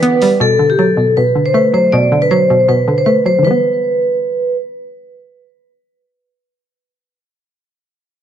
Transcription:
0.00 0.41 D3 medium
0.00 0.38 E3 medium
0.00 0.41 E3 medium
0.00 0.21 G3 medium
0.00 0.38 B3 medium
0.00 0.41 B3 medium
0.00 0.38 G4 medium
0.00 0.38 B4 medium
0.00 0.37 D5 medium
0.00 closed hi-hat medium
0.22 0.41 G3 medium
0.22 open hi-hat medium
0.40 0.96 B2 loud
0.40 0.68 A4 loud
0.59 1.34 D3 medium
0.70 0.77 G4 medium
0.79 1.72 F#3 medium
0.79 1.15 A4 medium
0.97 1.16 B2 medium
1.17 1.92 B2 medium
1.17 1.44 B4 medium
1.35 2.11 D3 medium
1.46 1.53 C5 medium
1.54 2.49 A3 medium
1.54 1.70 B4 medium
1.74 2.30 F#3 medium
1.74 1.89 C5 medium
1.92 2.49 B2 loud
1.92 2.20 D5 loud
2.12 2.87 D3 medium
2.22 2.29 B4 medium
2.31 3.24 F#3 medium
2.31 2.66 C5 medium
2.50 2.67 B2 medium
2.68 3.44 B2 medium
2.68 2.96 B4 medium
2.88 3.37 D3 medium
2.98 3.05 C5 medium
3.06 3.44 A3 medium
3.06 3.21 B4 medium
3.26 3.45 F#3 medium
3.26 3.41 C5 medium
3.39 7.57 D3 medium
3.43 7.61 E3 medium
3.43 4.54 B4 medium
3.47 7.65 G3 medium
3.51 7.69 B3 medium

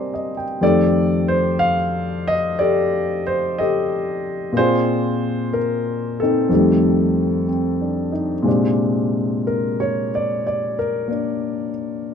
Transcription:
0.00 0.59 C3 medium
0.00 0.61 G3 soft
0.00 0.63 A#3 medium
0.00 0.63 C4 medium
0.00 0.65 D#4 medium
0.00 0.63 G4 soft
0.00 0.64 A#4 soft
0.00 0.11 C5 soft
0.00 0.31 D5 soft
0.00 0.12 D#5 medium
0.00 0.36 G5 medium
0.00 0.64 A#5 medium
0.00 0.64 C6 medium
0.14 0.43 D#5 medium
0.37 0.71 G5 medium
0.61 4.54 F2 medium
0.61 4.54 D#3 medium
0.61 4.54 A3 medium
0.61 2.59 G4 medium
0.61 2.55 A4 medium
0.61 1.32 D5 medium
1.28 1.57 C5 medium
1.59 1.74 F5 loud
2.28 2.34 D#5 medium
2.59 3.58 G4 medium
2.59 3.58 A4 medium
2.59 3.22 D5 medium
3.27 3.57 C5 medium
3.58 4.52 G4 medium
3.58 4.52 A4 medium
3.58 4.58 D#5 medium
4.52 6.49 A#2 medium
4.52 6.50 A#3 soft
4.52 6.21 C4 soft
4.57 6.48 F4 medium
4.57 6.48 G#4 medium
4.57 5.56 C5 loud
4.57 6.52 D5 medium
5.53 6.22 A#4 medium
6.20 7.47 C4 medium
6.20 8.11 D#4 medium
6.20 7.44 A4 medium
6.49 8.46 F2 medium
6.49 8.47 D#3 medium
6.49 8.47 G3 medium
6.54 8.48 A3 medium
7.48 8.12 C4 soft
7.81 8.32 D4 soft
8.12 8.64 D#4 soft
8.42 12.14 A#2 medium
8.42 12.14 C3 medium
8.42 12.14 G#3 medium
8.48 11.09 D4 medium
9.47 9.77 A#4 medium
9.80 10.10 C#5 medium
10.15 10.44 D5 medium
10.47 10.76 D5 medium
10.79 11.71 A#4 medium
11.08 12.14 A#3 soft
11.08 12.14 D4 soft

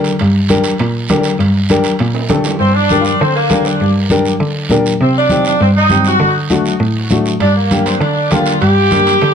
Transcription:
0.00 0.20 D3 medium
0.00 0.11 D4 medium
0.00 0.11 G4 medium
0.00 0.11 A#4 medium
0.04 high timbale medium
0.04 short guiro medium
0.19 0.32 G2 medium
0.19 high conga soft
0.19 high timbale medium
0.19 long guiro medium
0.49 0.71 D4 medium
0.49 0.71 G4 medium
0.49 0.71 A#4 medium
0.49 high conga medium
0.49 high timbale medium
0.49 short guiro medium
0.64 high timbale medium
0.64 short guiro medium
0.78 1.04 A#2 medium
0.78 high conga soft
0.78 high timbale medium
0.78 long guiro medium
1.08 1.39 D3 medium
1.08 1.31 D4 medium
1.08 1.31 G4 medium
1.08 1.31 A#4 medium
1.08 high conga medium
1.08 high timbale medium
1.08 low timbale medium
1.08 short guiro medium
1.23 high timbale medium
1.23 short guiro medium
1.38 1.52 G2 medium
1.38 high conga soft
1.38 high timbale medium
1.38 long guiro medium
1.69 1.91 D4 medium
1.69 1.91 G4 medium
1.69 1.91 A#4 medium
1.69 high conga medium
1.69 high timbale medium
1.69 short guiro medium
1.84 high timbale medium
1.84 short guiro medium
1.99 2.24 A#2 medium
1.99 high conga soft
1.99 high timbale medium
1.99 long guiro medium
2.15 high timbale medium
2.29 2.54 D3 medium
2.29 2.51 D4 medium
2.29 2.51 G4 medium
2.29 2.51 A4 medium
2.29 high conga medium
2.29 high timbale medium
2.29 short guiro medium
2.44 low timbale medium
2.44 short guiro medium
2.59 3.08 G2 medium
2.59 2.73 C4 medium
2.59 high conga soft
2.59 long guiro medium
2.74 3.01 D4 medium
2.89 3.11 D4 medium
2.89 3.12 G4 medium
2.89 3.12 A#4 medium
2.89 high conga medium
2.89 short guiro medium
3.01 3.20 D4 medium
3.01 3.05 F4 medium
3.01 short guiro medium
3.20 3.33 D3 medium
3.20 3.36 C4 medium
3.20 high conga soft
3.20 long guiro medium
3.35 3.63 A#3 medium
3.50 3.74 D3 medium
3.50 3.71 D4 medium
3.50 3.71 G4 medium
3.50 3.72 A#4 medium
3.50 high conga medium
3.50 short guiro medium
3.65 3.96 D4 medium
3.65 short guiro medium
3.80 4.28 G2 medium
3.80 high conga soft
3.80 long guiro medium
4.10 4.31 D4 medium
4.10 4.31 G4 medium
4.10 4.32 A#4 medium
4.10 high conga medium
4.10 short guiro medium
4.25 short guiro medium
4.40 4.52 D3 medium
4.40 high conga soft
4.40 long guiro medium
4.70 4.94 A#2 medium
4.70 4.91 D4 medium
4.70 4.91 G4 medium
4.70 4.92 A#4 medium
4.70 high conga medium
4.70 short guiro medium
4.86 short guiro medium
4.99 5.49 C3 medium
4.99 5.15 C4 medium
4.99 high conga soft
4.99 long guiro medium
5.18 5.45 D4 medium
5.29 5.51 C4 medium
5.29 5.52 D#4 medium
5.29 5.52 G4 medium
5.29 high conga medium
5.29 short guiro medium
5.45 5.60 D4 medium
5.45 short guiro medium
5.60 5.73 G2 medium
5.60 5.68 C4 medium
5.60 high conga soft
5.60 long guiro medium
5.76 6.04 D#4 medium
5.90 6.14 G2 medium
5.90 6.11 C4 medium
5.90 6.12 D#4 medium
5.90 6.12 G4 medium
5.90 high conga medium
5.90 short guiro medium
6.04 6.35 F#4 medium
6.04 short guiro medium
6.19 6.68 D3 medium
6.19 high conga soft
6.19 long guiro medium
6.50 6.71 A3 medium
6.50 6.72 D4 medium
6.50 6.72 F#4 medium
6.50 high conga medium
6.50 short guiro medium
6.66 short guiro medium
6.80 6.92 A2 medium
6.80 high conga soft
6.80 long guiro medium
7.10 7.34 A2 medium
7.10 7.32 A3 medium
7.10 7.32 D4 medium
7.10 7.32 F#4 medium
7.10 high conga medium
7.10 short guiro medium
7.26 short guiro medium
7.40 7.88 G2 medium
7.40 7.55 D4 medium
7.40 high conga soft
7.40 high timbale medium
7.40 long guiro medium
7.56 7.84 A#3 medium
7.71 7.92 A#3 medium
7.71 7.92 D4 medium
7.71 7.92 G4 medium
7.71 high conga medium
7.71 high timbale medium
7.71 short guiro medium
7.86 8.01 C4 medium
7.86 high timbale medium
7.86 short guiro medium
8.00 8.13 D3 medium
8.00 8.29 D4 medium
8.00 high conga soft
8.00 high timbale medium
8.00 long guiro medium
8.30 8.55 D3 medium
8.30 8.52 A#3 medium
8.30 8.52 D4 medium
8.30 8.61 F4 medium
8.30 8.52 G4 medium
8.30 high conga medium
8.30 high timbale medium
8.30 short guiro medium
8.46 high timbale medium
8.46 short guiro medium
8.61 9.09 G2 medium
8.61 9.34 G4 loud
8.61 high conga soft
8.61 high timbale medium
8.61 long guiro medium
8.91 9.12 A#3 medium
8.91 9.13 D4 medium
8.91 9.13 G4 medium
8.91 high conga medium
8.91 high timbale medium
8.91 short guiro medium
9.07 high timbale medium
9.07 short guiro medium
9.21 9.34 D3 medium
9.21 high conga soft
9.21 high timbale medium
9.21 long guiro medium

